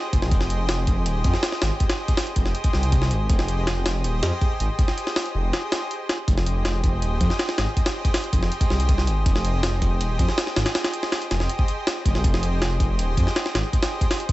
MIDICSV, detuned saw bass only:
0, 0, Header, 1, 2, 480
1, 0, Start_track
1, 0, Key_signature, -4, "minor"
1, 0, Tempo, 372671
1, 408, Time_signature, 4, 2, 24, 8
1, 18447, End_track
2, 0, Start_track
2, 0, Title_t, "Detuned saw bass"
2, 0, Program_c, 0, 39
2, 167, Note_on_c, 0, 29, 86
2, 293, Note_on_c, 0, 36, 86
2, 312, Note_off_c, 0, 29, 0
2, 398, Note_off_c, 0, 36, 0
2, 408, Note_on_c, 0, 29, 98
2, 1109, Note_off_c, 0, 29, 0
2, 1127, Note_on_c, 0, 29, 87
2, 1368, Note_on_c, 0, 27, 104
2, 1387, Note_off_c, 0, 29, 0
2, 1584, Note_off_c, 0, 27, 0
2, 1605, Note_on_c, 0, 41, 101
2, 1715, Note_off_c, 0, 41, 0
2, 2090, Note_on_c, 0, 32, 89
2, 2198, Note_off_c, 0, 32, 0
2, 3045, Note_on_c, 0, 29, 90
2, 3263, Note_off_c, 0, 29, 0
2, 3528, Note_on_c, 0, 36, 80
2, 4008, Note_on_c, 0, 32, 85
2, 4027, Note_off_c, 0, 36, 0
2, 4225, Note_off_c, 0, 32, 0
2, 4246, Note_on_c, 0, 29, 100
2, 4948, Note_off_c, 0, 29, 0
2, 4966, Note_on_c, 0, 29, 89
2, 5208, Note_on_c, 0, 27, 101
2, 5227, Note_off_c, 0, 29, 0
2, 5424, Note_off_c, 0, 27, 0
2, 5447, Note_on_c, 0, 41, 102
2, 5556, Note_off_c, 0, 41, 0
2, 5926, Note_on_c, 0, 32, 92
2, 6036, Note_off_c, 0, 32, 0
2, 6886, Note_on_c, 0, 29, 91
2, 7103, Note_off_c, 0, 29, 0
2, 8088, Note_on_c, 0, 29, 96
2, 8789, Note_off_c, 0, 29, 0
2, 8806, Note_on_c, 0, 29, 92
2, 9047, Note_on_c, 0, 27, 102
2, 9066, Note_off_c, 0, 29, 0
2, 9264, Note_off_c, 0, 27, 0
2, 9286, Note_on_c, 0, 41, 103
2, 9396, Note_off_c, 0, 41, 0
2, 9765, Note_on_c, 0, 32, 92
2, 9875, Note_off_c, 0, 32, 0
2, 10728, Note_on_c, 0, 29, 90
2, 10945, Note_off_c, 0, 29, 0
2, 11208, Note_on_c, 0, 36, 83
2, 11687, Note_on_c, 0, 32, 87
2, 11706, Note_off_c, 0, 36, 0
2, 11904, Note_off_c, 0, 32, 0
2, 11928, Note_on_c, 0, 29, 95
2, 12629, Note_off_c, 0, 29, 0
2, 12648, Note_on_c, 0, 29, 91
2, 12890, Note_on_c, 0, 27, 104
2, 12909, Note_off_c, 0, 29, 0
2, 13105, Note_off_c, 0, 27, 0
2, 13128, Note_on_c, 0, 41, 100
2, 13237, Note_off_c, 0, 41, 0
2, 13609, Note_on_c, 0, 32, 91
2, 13717, Note_off_c, 0, 32, 0
2, 14570, Note_on_c, 0, 29, 94
2, 14786, Note_off_c, 0, 29, 0
2, 15528, Note_on_c, 0, 29, 88
2, 15651, Note_on_c, 0, 36, 84
2, 15670, Note_off_c, 0, 29, 0
2, 15758, Note_off_c, 0, 36, 0
2, 15768, Note_on_c, 0, 29, 99
2, 16469, Note_off_c, 0, 29, 0
2, 16487, Note_on_c, 0, 29, 88
2, 16729, Note_on_c, 0, 27, 105
2, 16748, Note_off_c, 0, 29, 0
2, 16945, Note_off_c, 0, 27, 0
2, 16967, Note_on_c, 0, 41, 100
2, 17077, Note_off_c, 0, 41, 0
2, 17447, Note_on_c, 0, 32, 90
2, 17557, Note_off_c, 0, 32, 0
2, 18407, Note_on_c, 0, 29, 90
2, 18447, Note_off_c, 0, 29, 0
2, 18447, End_track
0, 0, End_of_file